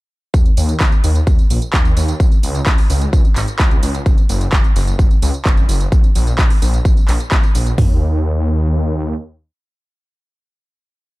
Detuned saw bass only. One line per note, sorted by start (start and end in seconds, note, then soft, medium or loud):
0.34 0.42 D#2 loud
0.57 0.74 D#2 medium
0.80 0.89 D#2 medium
1.04 1.21 D#2 medium
1.27 1.35 D#2 medium
1.50 1.59 A#1 medium
1.73 1.90 D#2 loud
1.97 2.14 D#2 medium
2.20 2.28 C#2 loud
2.43 2.60 C#2 loud
2.66 2.75 C#2 medium
2.90 3.07 C#2 medium
3.13 3.21 C#2 medium
3.36 3.45 G#1 medium
3.59 3.76 C#2 loud
3.83 4.00 C#2 medium
4.06 4.15 F#1 loud
4.29 4.46 F#1 medium
4.52 4.61 F#1 medium
4.76 4.93 F#1 medium
4.99 5.08 F#1 medium
5.22 5.31 C#2 medium
5.46 5.63 F#1 loud
5.69 5.86 F#1 medium
5.92 6.01 A#1 loud
6.15 6.32 A#1 medium
6.39 6.47 A#1 medium
6.62 6.79 A#1 medium
6.85 6.94 A#1 medium
7.08 7.17 A#1 medium
7.32 7.40 A#1 medium
7.55 7.72 A#1 loud
7.78 9.14 D#2 loud